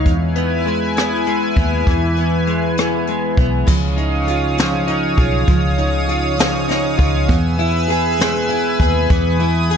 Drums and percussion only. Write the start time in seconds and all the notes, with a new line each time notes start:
0.06 kick, closed hi-hat
0.36 closed hi-hat
0.67 closed hi-hat
0.97 cross-stick, closed hi-hat
1.27 closed hi-hat
1.56 kick, closed hi-hat
1.87 kick, closed hi-hat
2.16 closed hi-hat
2.47 closed hi-hat
2.77 cross-stick, closed hi-hat
3.07 closed hi-hat
3.37 kick, closed hi-hat
3.68 kick, crash
3.98 closed hi-hat
4.28 closed hi-hat
4.58 snare, closed hi-hat
4.88 closed hi-hat
5.18 kick, closed hi-hat
5.48 kick, closed hi-hat
5.78 closed hi-hat
6.09 closed hi-hat
6.39 snare, closed hi-hat
6.69 snare, closed hi-hat
6.99 kick, closed hi-hat
7.29 kick, closed hi-hat
7.59 closed hi-hat
7.90 closed hi-hat
8.20 snare, closed hi-hat
8.49 closed hi-hat
8.80 kick, closed hi-hat
9.10 kick, closed hi-hat
9.40 closed hi-hat
9.71 closed hi-hat